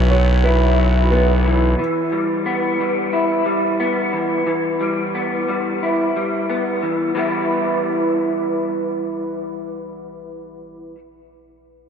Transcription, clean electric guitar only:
Already playing: B2 E3 F#3 B3
0.12 F#3
0.45 E4
0.79 F#3
1.12 B3
1.45 E3
1.79 E3
2.12 G3
2.46 B3
2.80 G3
3.13 E4
3.46 G3
3.80 B3
4.13 E3
4.47 E3
4.81 G3
5.15 B3
5.49 G3
5.83 E4
6.16 G3
6.50 B3
6.83 E3
7.15 E3 G3 B3 E4

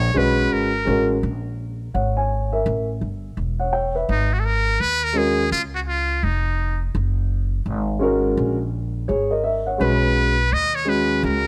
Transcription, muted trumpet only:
Already playing: C#5
0.17 B4
0.53 A#4
4.10 D#4
4.33 F#4
4.40 A4
4.45 A#4
4.81 B4
5.04 A#4
5.17 G#4
5.52 F4
5.75 F#4
5.88 F4
6.24 D#4
9.81 B4
10.53 D#5
10.75 C#5
10.89 B4
11.25 A#4

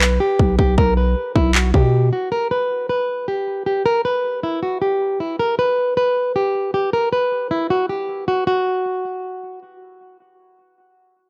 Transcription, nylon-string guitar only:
Already playing: B4
0.20 G4
0.59 G4
0.78 A#4
0.97 B4
1.36 E4
1.55 F#4
1.74 G4
2.13 F#4
2.32 A#4
2.51 B4
2.89 B4
3.28 G4
3.66 G4
3.86 A#4
4.05 B4
4.43 E4
4.63 F#4
4.82 G4
5.20 E4
5.39 A#4
5.59 B4
5.97 B4
6.36 G4
6.74 G4
6.93 A#4
7.13 B4
7.51 E4
7.70 F#4
7.89 G4
8.28 F#4
8.47 F#4

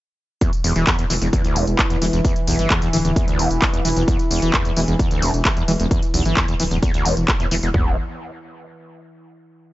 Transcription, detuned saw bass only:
0.64 E1
0.76 E1
1.10 E1
1.21 E1
1.56 E1
1.67 E1
2.02 E1
2.13 E1
2.48 B1
2.59 G1
2.93 D1
3.05 D1
3.39 E1
3.51 E1
3.85 E1
3.96 E1
4.31 E1
4.42 E1
4.76 E1
4.88 E1
5.22 E1
5.34 E1
5.68 E1
5.80 E1
6.14 B1
6.25 G1
6.60 D1
6.71 D1
7.05 E1
7.17 E1
7.51 E1
7.63 E1
7.74 E1

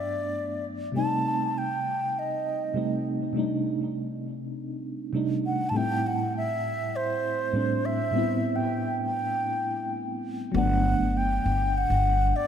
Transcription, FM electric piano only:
Already playing: G2 F#3 A3 B3 D4
0.92 C3 G3 A3
0.97 C4 D#4
2.74 C3 G3 A3 C4 D#4
3.33 C3 G3 A3
3.37 D4 D#4
5.13 C3 G3 A3 D4 D#4
5.71 A2 G3 A3
5.76 C4 E4
7.53 A2 G3 A3 C4 D4
8.11 A2 G3 B3
8.16 C4 E4
10.52 F#3 A3
10.56 B3 D4

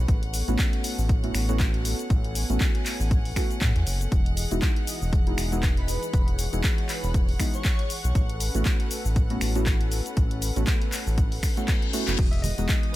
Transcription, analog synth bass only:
0.08 A1
0.48 A1
0.98 A1
1.35 A1
2.10 A1
2.50 A1
3.00 A1
3.61 A2
3.76 E2
3.87 F#1
4.12 E1
4.51 E1
5.02 E1
5.38 E1
6.14 E1
6.53 E1
7.03 E1
8.04 B1
8.15 A1
8.55 A1
9.05 A1
9.41 A1
10.17 A1
10.56 A1
11.07 A1
12.08 F#1
12.19 E1
12.58 E1

